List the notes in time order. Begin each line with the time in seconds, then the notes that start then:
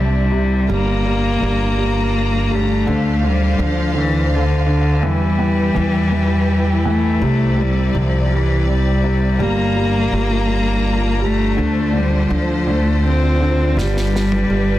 Already playing: C2 C3 G3 C4 D4 E4
0.00 G3
0.32 C3
0.69 G1 G3 A#3 D4 F4 A#5
1.06 G3
1.42 G1 G3
1.78 G3
2.51 G3 A3
2.87 D2 D3 C5 F5
3.23 D3 G3
3.59 D2 D3
3.63 F3
3.94 D3
3.99 E3
4.34 D3
4.67 D3
5.02 E2 E3 G3 E4 G4 B4
5.39 E3
5.75 E2 E3
6.12 E3
6.85 E3 A3
7.21 C2 C3 C4 D5
7.58 G3
7.95 C2 C3 F3
8.31 G3
8.36 E3
8.71 G3
9.04 C3
9.39 G1 G3 A#3 D4 F4 A#5
9.76 G3
10.12 G1 G3
10.49 G3
11.20 G3
11.25 A3
11.57 D2 D3 F4 C5
11.93 D3
11.97 G3
12.30 D2 D3 F3
12.67 D3 A3
13.07 C4
13.40 D3
13.76 G1 G3 D4 B4, snare
13.97 snare
14.13 G3, snare
14.32 high tom
14.50 G1 G3